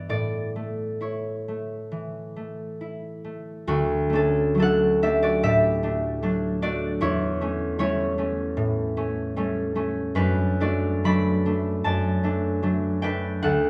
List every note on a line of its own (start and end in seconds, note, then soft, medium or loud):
0.00 0.14 G2 medium
0.00 0.14 E3 medium
0.00 0.13 B3 soft
0.00 1.00 E4 medium
0.00 3.11 E5 medium
0.00 0.14 G5 medium
0.09 3.71 A2 medium
0.09 4.00 D5 medium
0.56 1.47 A3 soft
1.01 2.80 E4 soft
1.01 3.71 C#5 medium
1.48 2.35 A3 soft
1.92 3.71 E3 soft
2.36 3.23 A3 soft
2.81 3.71 E4 soft
3.24 3.68 A3 soft
3.67 7.03 D2 medium
3.67 4.09 A3 medium
3.67 5.22 F#4 loud
4.10 4.57 A3 medium
4.10 7.41 C#4 medium
4.10 4.58 D4 medium
4.15 4.58 A4 loud
4.55 6.21 F#3 medium
4.55 5.01 A3 medium
4.60 5.02 D4 medium
4.60 8.50 A4 medium
4.60 7.04 F#5 loud
5.02 5.82 A3 medium
5.02 5.83 D4 medium
5.02 5.43 G4 medium
5.02 5.37 E5 medium
5.23 6.62 F#4 medium
5.23 5.57 D5 loud
5.43 7.04 A2 medium
5.43 9.35 G4 medium
5.43 7.44 E5 loud
5.83 6.22 A3 medium
5.83 6.22 D4 medium
6.22 7.04 F#3 medium
6.22 6.61 A3 medium
6.22 6.62 D4 medium
6.62 7.40 A3 medium
6.62 7.04 D4 medium
6.62 7.04 F#4 medium
6.62 7.04 D5 loud
7.01 10.19 E2 medium
7.01 7.79 E4 medium
7.01 7.78 C#5 loud
7.41 7.78 A3 medium
7.41 7.79 C#4 medium
7.79 9.35 G3 medium
7.79 8.17 A3 medium
7.79 8.17 C#4 medium
7.79 10.19 E4 medium
7.79 10.18 C#5 medium
8.18 8.96 A3 medium
8.18 8.96 C#4 medium
8.57 10.19 A2 medium
8.97 9.36 A3 medium
8.97 9.36 C#4 medium
9.36 10.19 G3 medium
9.36 9.74 A3 medium
9.36 9.75 C#4 medium
9.75 10.59 A3 medium
9.75 10.19 C#4 medium
10.15 11.84 F#2 medium
10.15 10.60 D4 medium
10.15 13.03 B4 loud
10.60 11.04 A3 medium
10.60 11.04 D4 medium
10.60 13.70 F#4 medium
10.60 11.05 D5 medium
11.04 12.62 F#3 medium
11.04 11.44 A3 medium
11.04 11.45 D4 medium
11.04 11.85 D5 medium
11.04 12.39 B5 loud
11.46 12.23 A3 medium
11.46 12.23 D4 medium
11.84 13.45 F#2 medium
11.84 13.70 D5 medium
11.84 13.70 A5 medium
12.23 12.62 A3 medium
12.23 12.62 D4 medium
12.63 13.70 F#3 medium
12.63 13.01 A3 medium
12.63 13.02 D4 medium
13.02 13.70 A3 medium
13.02 13.70 D4 medium
13.02 13.46 B4 medium
13.02 13.69 G5 loud
13.43 13.70 D2 medium
13.43 13.70 A4 medium
13.43 13.70 F#5 loud